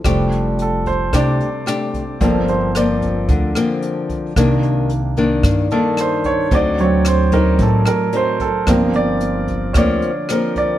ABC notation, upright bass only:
X:1
M:4/4
L:1/8
Q:1/4=111
K:F
V:1 name="Upright bass" clef=bass
F,,,4 C,, z3 | G,,,4 D,, z3 | C,,4 G,, z3 | D,,4 A,,, z3 |
G,,,4 D,, z3 |]